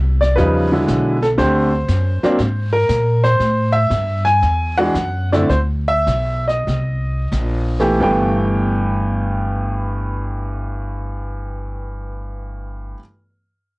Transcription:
Already playing: C2
0.21 D5, snare
0.36 E2 C#3 F3 G3 D#4 B4, brush sweep, snare
0.72 D3 F#3 G#3 E4
0.88 B1, snare, hi-hat pedal
1.22 A4, snare
1.38 D2 D3 A3 C4 G4 C5, brush sweep, snare
1.88 F#2, snare, hi-hat pedal
2.23 F#3 A#3 C4 D4, muted upright bass stroke, snare
2.39 G#2, brush sweep, snare
2.73 A#4
2.89 A#2, snare, hi-hat pedal
3.24 C5, snare
3.40 A2, brush sweep, snare
3.72 E5
3.90 G2, snare, hi-hat pedal
4.25 G#5, snare
4.42 E2, brush sweep, snare
4.78 E3 G#3 D4 F#4 F#5
4.95 F#2, snare, hi-hat pedal
5.33 D3 A3 C4 E4 D5, snare
5.49 D2 C5, brush sweep, snare
5.88 E5
6.07 B1, snare, hi-hat pedal
6.48 D#5, snare
6.67 C2, brush sweep, snare
7.32 A#1, snare, hi-hat pedal
7.79 E3 A3 B3 G4, snare
8.00 G1 G2 E3 A3 B3 G5

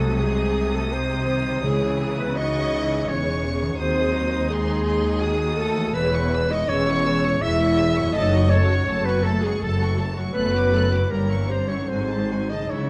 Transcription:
Already playing: C2 C3 F#3 G#3 A3 F#4 A4 D#5 D#6
0.19 G#3 D#4 G#4
0.74 A3 A4
0.92 G#3 C4 D#4 C5
1.29 D#3
1.47 C#3
1.52 G#3
1.56 E4
1.61 C#2 C#3 G#4 C#5
1.65 C#3 E3 G#3 E4
2.18 B3 B4
2.36 D#4 F#4 D#5 C#6
2.73 E4
3.07 E1 E2 C#4 G#4 C#5 C#6
3.61 D#3
3.66 G#3
3.70 F#4
3.75 D#2 C5 D#6
3.79 D#2 F#3 C4 G#4 C5
4.15 D#4
4.49 G#3 G#4 C6
4.85 C6
5.22 D#3 F#4 D#6
5.57 A3 A4
5.76 E3
5.81 G#3
5.85 G#4
5.90 C#5 E6
5.94 E1 E2 E3 B3 G#4 B4
6.11 G#3 E4 C#6
6.32 E3 G#4 E6
6.49 G#3 D#4 E4 D#5 C#6
6.68 E1 E2 E3 C#4 G#4 C#5 E6
6.87 G#3 E4 C#6
7.05 E3 G#4 E6
7.24 G#3 E4 C#6
7.41 E1 E2 E3 E4 G#4 E5 E6
7.59 G#3 E4 C#6
7.77 E3 G#4 E6
7.95 F#2 G#3 E4 C#6
8.00 A3
8.05 F#4
8.10 D#4 C#5 D#5
8.14 F#1 F#2 A3 A4 D#5 A5
8.32 F#3 F#4 C#6
8.49 A3 C#4 A4 C#5 A5
8.69 F#3 F#4 C#6
8.87 F#1 F#2 A3 A4 A5
9.05 F#3 B3 F#4 B4 C#6
9.24 A3 A4 A5
9.42 F#3 G#3 F#4 G#4 C#6
9.60 F#1 F#2 A3 A4 A5
9.79 F#3 F#4 C#6
9.99 A3 A4 A5
10.17 F#2 F#3 F#4 C#6
10.22 A3
10.27 F#4
10.31 A3 B4 D5
10.35 F#1 F#2 B3 A4 B4 F#6
10.54 F#3 F#4 D6
10.73 A3 A4 F#6
10.91 G2 F#3 F#4 D6
10.97 G3
11.02 E4
11.07 A#3 A#4 C#5
11.11 G1 G2 G3 G4 A#4 A#5
11.30 E3 E4 C#6
11.48 G3 C4 G4 C5 A#5
11.68 G#2 E3 C#4 E4 C#5 C#6
11.76 F#3
11.80 D#4
11.84 G#2 A4 C5
11.89 G#1 F#3 C4 F#4 G#5
12.09 D#3 G#4 A5
12.29 F#3 F#4 G#5
12.50 C#3 D#3 D#4 G#4 D#5 A5
12.57 G#3
12.62 E4
12.66 G#4 C#5 E5
12.71 C#2 C#3 G#3 C#4 E4 C#5

